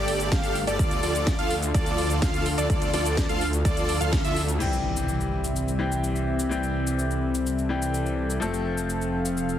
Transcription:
Already playing: G1 A3 D4 G4 A4 D5
0.08 open hi-hat
0.20 closed hi-hat, shaker
0.32 G1 G4 A4 F5, kick, snare, closed hi-hat, shaker
0.44 closed hi-hat, shaker
0.55 open hi-hat
0.67 G1 G4 A4 D5, closed hi-hat, shaker
0.79 D2 D3 D4 F4 A4 D5, kick, closed hi-hat, shaker
0.91 closed hi-hat, shaker
1.03 D2 F4 A4 D5, open hi-hat
1.15 closed hi-hat, shaker
1.27 kick, snare, closed hi-hat, shaker
1.39 D2 F4 A4 F5, closed hi-hat, shaker
1.50 open hi-hat
1.62 closed hi-hat, shaker
1.74 D2 F4 A4 D5, kick, closed hi-hat, shaker
1.86 closed hi-hat, shaker
1.98 open hi-hat
2.10 closed hi-hat, shaker
2.22 D2 F4 A4 F5, kick, snare, closed hi-hat, shaker
2.34 closed hi-hat, shaker
2.46 open hi-hat
2.58 D2 F4 A4 D5, closed hi-hat, shaker
2.70 D2 F4 A4 D5, kick, closed hi-hat, shaker
2.82 closed hi-hat, shaker
2.93 D2 F4 A4 D5, snare, open hi-hat
3.05 closed hi-hat, shaker
3.17 kick, snare, closed hi-hat, shaker
3.29 D2 F4 A4 F5, closed hi-hat, shaker
3.41 open hi-hat
3.53 closed hi-hat, shaker
3.65 D2 F4 A4 D5, kick, closed hi-hat, shaker
3.77 closed hi-hat, shaker
3.89 open hi-hat
4.01 D2 F4 A4 F5, closed hi-hat, shaker
4.13 kick, snare, closed hi-hat, shaker
4.24 D2 F4 A4 E5, closed hi-hat, shaker
4.36 open hi-hat
4.48 closed hi-hat, shaker
4.59 C2 C3 E3 G3 C4 G4 E5, crash, impact, shaker
4.73 shaker
4.97 shaker
5.09 shaker
5.21 shaker
5.44 shaker
5.56 shaker
5.68 shaker
5.79 E3 G3 C4 G4
5.92 shaker
6.04 shaker
6.16 shaker
6.39 shaker
6.49 E3 G3 C4 G4 A4, shaker
6.63 shaker
6.87 shaker
6.99 shaker
7.11 shaker
7.35 shaker
7.46 shaker
7.58 shaker
7.69 E3 G3 C4 G4
7.82 shaker
7.94 shaker
8.06 shaker
8.30 shaker
8.40 F1 F3 A3 C4 A4 F5, shaker
8.54 shaker
8.78 shaker
8.90 shaker
9.02 shaker
9.25 shaker
9.37 shaker
9.49 shaker

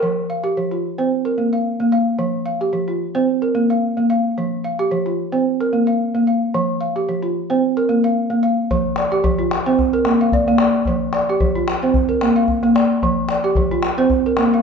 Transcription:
Already playing: A#4
0.02 F3
0.30 F5
0.44 G4
0.57 F3
0.71 F4
0.98 C4 C5
1.25 A#4
1.38 A#3
1.53 F5
1.80 A#3
1.92 F5
2.19 F3
2.46 F5
2.61 G4
2.73 F3
2.88 F4
3.15 C4 C5
3.42 A#4
3.55 A#3
3.70 F5
3.97 A#3
4.10 F5
4.38 F3
4.64 F5
4.79 G4
4.91 F3
5.06 F4
5.32 C4 C5
5.61 A#4
5.73 A#3
5.87 F5
6.15 A#3
6.27 F5
6.54 F3
6.81 F5
6.96 G4
7.09 F3
7.23 F4
7.50 C4 C5
7.77 A#4
7.89 A#3
8.04 F5
8.30 A#3
8.43 F5
8.71 F3, calabash thump
8.96 D5, calabash click
9.12 G4
9.24 F3, calabash thump
9.39 F4
9.51 calabash click
9.66 C4 C5
9.79 calabash thump
9.93 A#4
10.05 A#3, calabash click
10.21 F5
10.32 D5, calabash thump
10.47 A#3, calabash click
10.58 D5, calabash click
10.85 F3, calabash thump
11.13 D5, calabash click
11.29 G4
11.40 F3, calabash thump
11.55 F4
11.68 calabash click
11.82 C4 C5
11.94 calabash thump
12.09 A#4
12.21 A#3, calabash click
12.36 F5
12.48 calabash thump
12.63 A#3, calabash click
12.76 D5, calabash click
13.02 F3, calabash thump
13.29 D5, calabash click
13.44 G4
13.55 F3, calabash thump
13.71 F4
13.83 calabash click
13.98 C4 C5
14.10 calabash thump
14.26 A#4
14.37 A#3, calabash click
14.54 F5

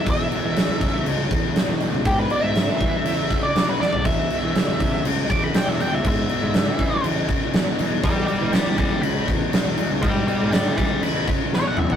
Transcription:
0.05 E2 B2, kick, crash
0.10 E5
0.31 E2 B2, crash
0.43 E3
0.56 E2 C#3, snare, crash
0.68 E2
0.81 E2 C#3, kick, crash
1.05 C#2 E2 C#3, crash
1.30 E2 C#3, kick, crash
1.55 E2 B2, snare, crash
1.68 E2
1.80 E2 B2, crash
1.93 C#2
2.05 E2 G#2 B2 G4, kick, crash
2.19 B4
2.30 E2 B2 D5, crash
2.42 G#2 E5
2.55 E2 C#3, snare, crash
2.67 E3
2.80 E2 C#3, kick, crash
3.05 E2 C#3, crash
3.30 E2 C#3, kick, crash
3.43 D5
3.55 E2 B2, snare, crash
3.69 B4
3.80 E2 B2 D5, snare
3.93 floor tom
4.05 E2 B2 E5, kick, crash
4.30 E2 B2, crash
4.43 E3
4.55 E2 C#3, snare, crash
4.68 E2
4.80 E2 C#3, kick, crash
5.04 C#2 E2 C#3, crash
5.30 E2 C#3 D6, kick, crash
5.44 B5
5.54 E2 B2 G5, snare, crash
5.67 E2 E5
5.80 E2 B2 G5, crash
5.93 C#2 E5
6.05 E2 G#2 B2 E5, kick, crash
6.29 E2 B2, crash
6.42 G#2
6.54 E2 C#3, snare, crash
6.67 E3
6.79 E2 C#3, kick, crash
7.04 E2 C#3, crash
7.28 E2 C#3, kick, crash
7.54 E2 B2, snare, crash
7.78 E2 B2, crash
8.03 E2 B2 D5 G5, kick, crash
8.27 E2 B2 D5 G5, crash
8.41 E3
8.53 E2 C#3 G5 B5, snare, crash
8.65 E2
8.78 E2 C#3 G5 B5, kick, crash
9.02 C#2 E2 C#3 B5, crash
9.28 E2 C#3, kick, crash
9.52 E2 B2, snare, crash
9.65 E2
9.78 E2 B2, crash
9.90 C#2
10.02 E2 G#2 B2 D5 G5, kick, crash
10.27 E2 B2 D5 G5, crash
10.40 G#2
10.52 E2 C#3 G5 B5, snare, crash
10.65 E3
10.77 E2 C#3 G5 B5, kick, crash
11.02 E2 C#3 B5, crash
11.28 E2 C#3, kick, crash
11.52 E2 B2 C#5, snare
11.67 F#5
11.77 E2 B2 E5, mid tom
11.90 F#5, floor tom

